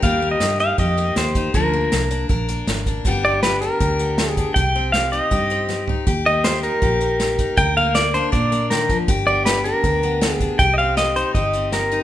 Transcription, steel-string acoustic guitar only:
\new Staff \with { instrumentName = "Steel-string acoustic guitar" } { \time 4/4 \key c \minor \tempo 4 = 159 << { <g bes ees' g'>8 bes4 ees'8 g'8 bes4 ees'8 | <f bes d'>8 bes4 d'8 bes'8 bes4 d'8 | <g b d' g'>8 b4 d'8 g'8 b4 d'8 | g'8 c'4 ees'8 g'8 c'4 ees'8 |
g'8 bes4 ees'8 g'8 bes4 ees'8 | bes'8 bes4 d'8 bes'8 bes4. | g'8 b4 d'8 g'8 b4 d'8 | g'8 c'4 ees'8 g'8 c'4 ees'8 | } \\ { ees4 g4 bes,4 g4 | d4 f4 d4 f4 | g,4 g4 d4 g4 | c4 g4 g,4 g4 |
ees4 g4 bes,4 g4 | d4 f4 d4 ees8 f8 | g,4 g4 d4 g4 | c4 g4 g,4 g4 | } >> }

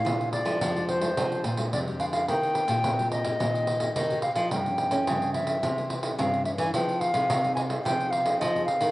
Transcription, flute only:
\new Staff \with { instrumentName = "Flute" } { \time 4/4 \key bes \mixolydian \tempo 4 = 108 f''8 d''4 c''4 r8 d''8 f''16 f''16 | g''4. ees''4. ees''8 f''16 f''16 | g''4. e''4 r8 f''8 e''16 aes''16 | g''8 f''4 aes''8 g''8 f''8 ees''8 f''8 | }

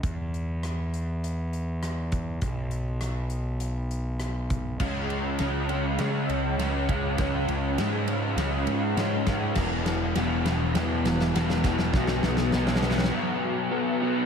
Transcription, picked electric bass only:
\new Staff \with { instrumentName = "Picked electric bass" } { \clef bass \time 4/4 \key cis \minor \tempo 4 = 101 e,1 | b,,1 | cis,4 cis,4 cis8 cis,8 cis,4 | cis,8 cis,8 gis,4 cis,8 gis,8 gis,4 |
e,,4 e,,4 e,8 e,,8 e,,4 | b,,8 b,,8 b,,4 r2 | }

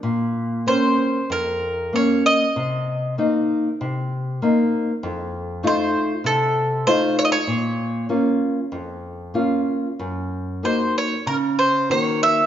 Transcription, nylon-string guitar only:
\new Staff \with { instrumentName = "Nylon-string guitar" } { \time 4/4 \key bes \minor \tempo 4 = 96 bes,4 <bes c' des'>4 f,4 <bes des'>4 | c4 <bes c' ees'>4 c4 <bes c' ees'>4 | f,4 <a ees' f'>4 c4 <a ees' f'>4 | bes,4 <bes des' f'>4 f,4 <bes des' f'>4 |
ges,4 <bes ees' ges'>4 des4 <ees bes ges'>4 | }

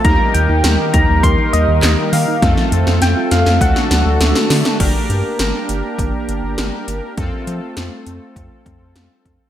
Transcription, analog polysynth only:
\new Staff \with { instrumentName = "Analog polysynth" } { \time 4/4 \key g \minor \tempo 4 = 101 <bes ees' g' bes'>1 | <a c' f' a'>2 <a d' fis' a'>2 | <d' g' bes'>1 | <c' f' a'>1 | }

